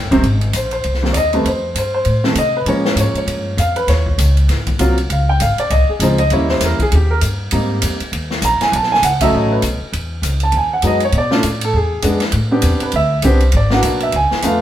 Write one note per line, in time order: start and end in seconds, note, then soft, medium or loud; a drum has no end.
0.03 0.12 G1 soft
0.11 0.22 D#1 medium
0.11 0.23 C3 medium
0.11 0.23 D#3 medium
0.11 0.23 G3 medium
0.11 0.23 C4 loud
0.11 kick medium
0.11 ride soft
0.23 0.53 G#1 medium
0.23 ride medium
0.41 ride soft
0.53 0.83 A#1 medium
0.53 0.71 C5 medium
0.53 hi-hat pedal medium
0.53 ride medium
0.71 1.12 C5 medium
0.71 ride soft
0.84 1.14 C2 medium
0.84 ride soft
0.94 snare soft
1.03 1.14 D#3 medium
1.03 1.14 G3 medium
1.03 1.14 A#3 medium
1.03 1.14 C4 medium
1.03 snare soft
1.13 1.44 D#2 medium
1.13 1.15 D5 medium
1.13 hi-hat pedal medium
1.13 ride medium
1.17 1.34 D#5 medium
1.33 1.44 D#3 medium
1.33 1.45 G3 medium
1.33 1.44 A3 medium
1.33 1.45 C4 medium
1.33 1.46 B4 medium
1.33 ride soft
1.45 1.74 F2 medium
1.45 1.77 C5 medium
1.45 ride medium
1.75 2.05 G2 medium
1.75 1.93 C5 medium
1.75 hi-hat pedal medium
1.75 ride medium
1.94 2.34 C5 medium
2.05 2.35 A2 medium
2.05 ride soft
2.24 2.35 D#3 medium
2.24 2.35 G3 medium
2.24 2.35 A3 medium
2.24 2.36 C4 medium
2.24 snare soft
2.35 2.65 C3 medium
2.35 2.55 D#5 medium
2.35 hi-hat pedal medium
2.35 ride medium
2.57 2.68 B4 medium
2.66 2.95 A#2 medium
2.66 3.51 F3 medium
2.66 3.51 G#3 medium
2.66 3.51 A#3 medium
2.66 3.51 C#4 medium
2.66 2.99 C#5 medium
2.66 ride medium
2.85 snare medium
2.96 3.13 G#2 medium
2.96 hi-hat pedal medium
2.96 ride medium
3.00 3.16 C#5 medium
3.14 3.56 C#5 medium
3.14 muted upright bass stroke soft
3.14 ride soft
3.26 3.56 G2 medium
3.26 ride medium
3.57 3.87 F2 medium
3.57 3.77 F5 medium
3.57 hi-hat pedal medium
3.57 ride medium
3.76 3.88 B4 medium
3.76 ride soft
3.87 4.17 D#2 medium
3.87 4.34 C#5 medium
3.87 snare soft
3.87 ride medium
4.06 kick soft
4.18 4.48 C#2 medium
4.18 hi-hat pedal medium
4.18 ride medium
4.37 ride soft
4.48 4.78 G#1 medium
4.48 snare soft
4.48 ride medium
4.67 kick medium
4.67 ride soft
4.79 5.09 C2 medium
4.79 4.96 F#3 medium
4.79 4.96 A#3 medium
4.79 4.96 C4 medium
4.79 4.96 F4 medium
4.79 hi-hat pedal medium
4.79 ride medium
4.98 ride soft
5.10 5.39 C#2 medium
5.10 5.29 F5 medium
5.10 ride medium
5.29 5.40 G5 loud
5.40 5.57 G#1 medium
5.40 5.59 F5 medium
5.40 hi-hat pedal medium
5.40 ride medium
5.58 5.71 D5 medium
5.58 muted upright bass stroke soft
5.58 ride soft
5.70 5.87 C2 medium
5.70 5.89 D#5 medium
5.70 ride medium
5.89 6.01 G#4 medium
5.89 muted upright bass stroke soft
6.00 6.30 C#2 medium
6.00 6.18 F3 medium
6.00 6.18 G#3 medium
6.00 6.18 C4 medium
6.00 6.18 D#4 medium
6.00 6.20 C5 medium
6.00 hi-hat pedal soft
6.00 ride medium
6.18 6.31 D#5 medium
6.18 ride soft
6.30 6.60 D#2 medium
6.30 6.77 G3 medium
6.30 6.77 A#3 medium
6.30 6.77 C#4 medium
6.30 6.77 E4 medium
6.30 6.50 C#5 medium
6.30 ride medium
6.49 6.61 C5 medium
6.49 snare soft
6.60 6.78 E2 medium
6.60 6.81 A#4 medium
6.60 snare soft
6.60 hi-hat pedal medium
6.60 ride medium
6.79 6.93 G#4 medium
6.79 muted upright bass stroke soft
6.79 kick medium
6.79 ride soft
6.92 7.21 D#2 medium
6.92 7.11 G4 medium
6.92 ride medium
7.11 7.18 A#4 medium
7.21 7.51 G2 medium
7.21 hi-hat pedal medium
7.21 ride medium
7.51 7.81 G#2 medium
7.51 7.97 G3 medium
7.51 7.97 A#3 medium
7.51 7.97 C4 medium
7.51 7.97 D#4 medium
7.51 ride medium
7.82 7.99 F2 medium
7.82 hi-hat pedal medium
7.82 ride medium
8.00 muted upright bass stroke soft
8.00 ride soft
8.12 8.41 D#2 medium
8.12 ride medium
8.31 snare soft
8.42 8.59 A#1 loud
8.42 8.62 A#5 loud
8.42 hi-hat pedal medium
8.42 ride medium
8.61 8.73 G#5 medium
8.61 muted upright bass stroke soft
8.61 snare soft
8.61 ride soft
8.72 9.02 B1 loud
8.72 8.92 A5 medium
8.72 ride medium
8.83 snare soft
8.92 9.03 G#5 loud
8.92 snare soft
9.02 9.32 C#2 medium
9.02 9.21 F#5 medium
9.02 hi-hat pedal medium
9.02 ride medium
9.21 9.61 F#3 medium
9.21 9.61 A3 medium
9.21 9.61 C#4 medium
9.21 9.61 D#4 medium
9.21 9.33 E5 medium
9.21 kick soft
9.21 ride medium
9.32 9.62 A1 medium
9.32 9.51 D#5 medium
9.52 9.59 B4 medium
9.62 9.80 B1 medium
9.62 hi-hat pedal medium
9.62 ride medium
9.81 muted upright bass stroke soft
9.93 10.21 E2 medium
9.93 ride medium
10.22 10.52 C#2 medium
10.22 hi-hat pedal medium
10.22 ride medium
10.40 10.54 A5 medium
10.40 ride soft
10.52 10.82 D#2 medium
10.52 ride soft
10.57 10.73 G#5 medium
10.73 10.84 F#5 medium
10.82 11.12 F#2 medium
10.82 11.00 F#3 medium
10.82 11.00 G#3 medium
10.82 11.00 B3 medium
10.82 11.00 D#4 medium
10.82 hi-hat pedal medium
10.82 ride medium
10.87 11.03 D#5 medium
11.00 ride soft
11.05 11.15 C#5 medium
11.12 11.42 B2 medium
11.12 ride medium
11.18 11.61 D5 medium
11.31 11.42 A3 medium
11.31 11.42 C#4 medium
11.31 11.42 D4 medium
11.31 11.42 F4 medium
11.31 snare medium
11.43 11.73 A2 medium
11.43 hi-hat pedal medium
11.43 ride medium
11.61 11.75 A4 medium
11.61 ride medium
11.73 12.03 E2 medium
11.73 12.02 G#4 medium
12.02 12.32 F2 medium
12.02 12.20 G#3 medium
12.02 12.20 B3 medium
12.02 12.20 D4 medium
12.02 12.20 G#4 medium
12.02 hi-hat pedal medium
12.02 ride medium
12.20 snare soft
12.20 ride soft
12.32 12.62 A2 loud
12.32 ride medium
12.51 12.91 B3 medium
12.51 12.91 C4 medium
12.51 12.91 D4 medium
12.51 12.91 G4 medium
12.62 12.80 E2 medium
12.62 hi-hat pedal medium
12.62 ride medium
12.80 12.94 B4 medium
12.80 muted upright bass stroke soft
12.80 ride soft
12.92 13.22 D2 medium
12.92 ride medium
12.96 13.23 E5 loud
13.22 13.52 C2 medium
13.22 13.40 B3 medium
13.22 13.40 C4 medium
13.22 13.40 D4 medium
13.22 13.41 G4 medium
13.22 hi-hat pedal medium
13.22 ride medium
13.27 13.53 C5 medium
13.40 ride soft
13.52 13.82 G#1 medium
13.52 ride medium
13.57 14.00 D5 medium
13.70 14.11 A#3 medium
13.70 14.11 B3 medium
13.70 14.11 D4 medium
13.70 14.12 F#4 medium
13.70 snare medium
13.82 14.12 B1 medium
13.82 hi-hat pedal medium
13.82 ride medium
14.00 14.14 E5 medium
14.00 ride soft
14.12 14.30 C#2 medium
14.12 14.43 G#5 medium
14.12 ride medium
14.31 muted upright bass stroke soft
14.31 snare soft
14.42 14.60 F2 medium
14.42 14.60 A3 medium
14.42 14.60 B3 medium
14.42 14.60 F4 medium
14.42 14.60 B4 medium
14.42 hi-hat pedal medium
14.42 ride medium
14.47 14.61 F5 medium